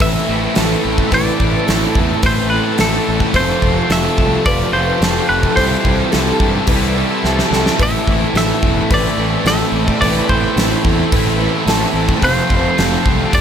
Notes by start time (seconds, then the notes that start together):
Already playing: A2 E3 A3 C4 E4 A4 B5
0.00 A1 A2 E3 A3 C4 E4 B4 E5, kick, open hi-hat
0.27 A1 A2 E3 A3 C4 E4
0.55 A1 A2 E3 A3 C4 E4 A4, snare, open hi-hat
0.85 A1
0.98 kick
1.10 A1 A2 E3 A3 C4 E4 B4, kick, open hi-hat
1.14 E4 D5 A5
1.40 A1, kick
1.67 A1 A4, snare, open hi-hat
1.95 E2, kick
2.23 A1 A2 E3 A3 C4 E4 B4 C5, kick, open hi-hat
2.50 E3 A3 C4 E4 B4
2.54 A2
2.78 A1 A2 E3 A3 C4 A4, snare, open hi-hat
2.82 E4
3.08 A1
3.20 kick
3.33 F1 F2 C3 F3 A3 C4 F4 G4 C5 A5, kick, open hi-hat
3.37 A3 C4 F4
3.62 F1, kick
3.90 F1 A4 E5, snare, open hi-hat
4.18 C2, kick
4.46 F1 F3 A3 C4 F4 B4 D5, kick, open hi-hat
4.72 F1 C3 F3 A3 C4 F4 C5
4.77 F2
4.99 F1 F2 C3 F3 A3 C4 A4, snare, open hi-hat
5.04 F4
5.29 F1 B4
5.43 kick
5.55 C2 C3 E3 G3 C4 E4 A4 C5 E5 A5, kick, open hi-hat
5.85 C2, kick
6.12 C2 A4, snare, open hi-hat
6.40 G2, kick
6.67 C2 C3 E3 G3 C4 E4 B4, kick, open hi-hat
6.95 E3 G3 C4 E4
6.99 C3
7.23 C2 C3 E3 G3 C4 A4, snare
7.27 E4
7.39 snare
7.51 C2, snare
7.66 snare
7.78 A1 A2 E3 A3 C4 E4 B4 B5, kick, open hi-hat
7.83 E4 E5
8.07 A1, kick
8.34 A1 A4 E5, snare, open hi-hat
8.63 E1, kick
8.89 A1 A2 E3 A3 C4 E4 B4, kick, open hi-hat
8.94 D5
9.17 A1 E3 A3 C4 E4
9.21 A2
9.44 A1 A2 E3 A3 C4 A4 E5, snare, open hi-hat
9.49 E4
9.72 A1
9.88 kick
10.01 A1 A2 E3 A3 C4 E4 B4 D5, kick, open hi-hat
10.29 A1 C5, kick
10.56 A1 A4, snare, open hi-hat
10.85 E2, kick
11.12 A1 A2 E3 A3 C4 E4 B4, kick, open hi-hat
11.38 E3 A3 C4 E4
11.42 A2
11.65 A1 A2 E3 A3 C4 E4 A4, snare, open hi-hat
11.94 A1
12.09 kick
12.21 F1 F2 C3 F3 A3 C4 F4 G4 C5 F5 A5, kick, open hi-hat
12.50 F1, kick
12.78 F1 A4, snare, open hi-hat
13.06 C2, kick
13.32 F1 F3 A3 C4 F4 B4 D5, kick, open hi-hat